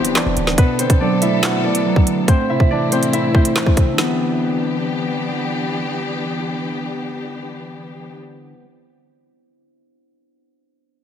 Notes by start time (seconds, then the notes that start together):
Already playing: D3 E3 G3 B3 C4 D4 E4 F#4 G4 C5 D5 E5 F#5
0.00 E1
0.05 closed hi-hat
0.15 E3 D4 D5, snare, clap
0.26 E1
0.37 D1 D3, closed hi-hat
0.47 snare
0.58 B2 B3 D4 A4 B4, kick, closed hi-hat
0.79 D3 C4 C5, closed hi-hat
0.90 kick, closed hi-hat
1.01 F#3 D4 D5
1.22 A3 E4 E5, closed hi-hat
1.43 B3 F#4 F#5, snare, clap, closed hi-hat
1.64 A3 D4 D5
1.75 closed hi-hat
1.86 F#3
1.96 kick
2.07 D3, closed hi-hat
2.28 A2 A3 C4 E4 C5, kick, closed hi-hat
2.50 C3 E4 E5
2.60 kick
2.71 E3 D4 D5
2.92 A3 C4 C5, closed hi-hat
3.03 closed hi-hat
3.13 C4 E4 E5, closed hi-hat
3.35 A3 C4 C5, kick
3.45 closed hi-hat
3.56 E3, snare, clap
3.66 kick
3.77 C3, kick, closed hi-hat
3.92 D3
3.96 E3 B3 D4 G4, snare
4.00 G3 B3